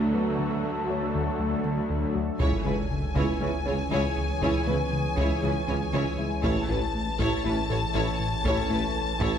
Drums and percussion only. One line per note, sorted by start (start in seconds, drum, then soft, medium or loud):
2.40 taiko medium
3.16 taiko medium
4.42 taiko medium
5.18 taiko medium
6.44 taiko medium
7.19 taiko medium
8.45 taiko medium
9.21 taiko medium